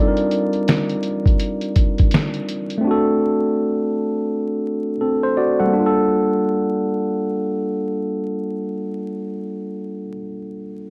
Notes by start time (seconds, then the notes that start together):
Already playing: G3 C4 D4 F4 D5
0.00 D#4 A4
0.08 A#4
0.17 closed hi-hat
0.31 closed hi-hat
0.53 closed hi-hat
0.68 snare, closed hi-hat
0.89 closed hi-hat
1.03 closed hi-hat
1.26 kick, closed hi-hat
1.40 closed hi-hat
1.61 closed hi-hat
1.76 kick, closed hi-hat
1.98 kick, closed hi-hat
2.11 snare, closed hi-hat
2.34 closed hi-hat
2.49 closed hi-hat
2.70 closed hi-hat
2.78 A3 C4
2.84 D4 F#4
2.91 A4
5.01 C4 A4
5.23 C5
5.37 F#4 D5
5.60 G3 A4 F#5
5.67 A#3
5.73 D4
5.80 F4
5.86 A4